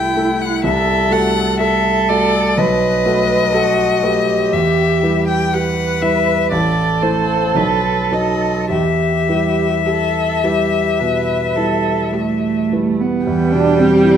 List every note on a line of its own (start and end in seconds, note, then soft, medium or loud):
0.00 0.64 C2 soft
0.00 0.17 A3 soft
0.00 0.17 E4 soft
0.00 0.67 E4 medium
0.00 0.17 A4 soft
0.00 0.41 A4 soft
0.00 0.43 G5 medium
0.17 0.60 A3 soft
0.17 0.61 E4 soft
0.17 0.60 A4 soft
0.41 0.64 F#5 medium
0.64 1.10 C2 medium
0.64 1.60 A4 medium
0.64 1.14 E5 medium
1.10 2.05 A3 soft
1.10 2.05 F#4 soft
1.10 2.06 A4 soft
1.10 1.60 F#5 medium
1.60 2.35 A4 soft
1.60 2.60 A4 medium
1.60 2.11 E5 medium
2.09 2.54 A3 soft
2.09 2.54 F#4 soft
2.09 2.55 A4 soft
2.09 2.59 D5 medium
2.58 3.05 B1 medium
2.58 3.56 B4 medium
2.58 4.54 D#5 medium
3.06 3.99 A3 soft
3.06 4.00 F#4 soft
3.06 4.00 B4 soft
3.54 4.05 F#4 medium
3.54 4.30 A4 soft
4.02 4.49 A3 soft
4.02 4.49 F#4 soft
4.02 5.54 G4 medium
4.02 4.49 B4 soft
4.52 5.01 E2 soft
4.52 5.27 E5 medium
5.03 5.99 G3 soft
5.03 5.99 E4 soft
5.03 5.99 B4 soft
5.27 5.55 G5 medium
5.53 6.29 G4 soft
5.53 6.54 B4 medium
5.53 6.04 F#5 medium
6.02 6.48 G3 soft
6.02 6.48 E4 soft
6.02 6.48 B4 soft
6.02 6.51 E5 medium
6.51 7.01 A1 soft
6.51 7.31 E4 soft
6.51 8.70 A4 medium
6.51 7.04 D5 medium
7.02 7.52 A3 soft
7.02 7.52 E4 soft
7.02 7.58 C5 medium
7.02 7.52 C5 soft
7.55 8.10 B1 soft
7.55 8.44 D#4 soft
7.55 8.15 B4 medium
8.12 8.67 F#3 soft
8.12 8.67 D#4 soft
8.12 8.67 B4 soft
8.12 8.71 D#5 medium
8.70 9.27 E2 soft
8.70 9.74 G4 soft
8.70 12.68 E5 medium
9.29 10.40 G3 soft
9.29 10.40 E4 soft
9.29 10.40 B4 soft
9.86 10.74 G4 soft
9.86 10.45 A4 soft
10.44 10.97 G3 soft
10.44 10.97 E4 soft
10.44 11.01 G4 soft
10.44 10.97 B4 soft
11.00 11.56 B2 soft
11.00 11.57 B4 soft
11.56 12.68 G3 soft
11.56 12.68 E4 soft
11.56 12.13 A4 soft
11.56 12.69 B4 soft
12.13 13.02 A3 medium
12.13 13.02 G4 soft
12.73 13.24 G3 soft
12.73 13.24 E4 soft
12.73 13.24 B4 soft
13.00 13.53 B3 medium
13.26 14.17 E2 soft
13.26 14.17 G3 medium
13.26 14.17 G5 soft
13.52 13.94 B2 soft
13.52 13.80 D4 medium
13.78 14.17 G3 soft
13.78 14.17 C4 medium
14.05 14.17 E4 soft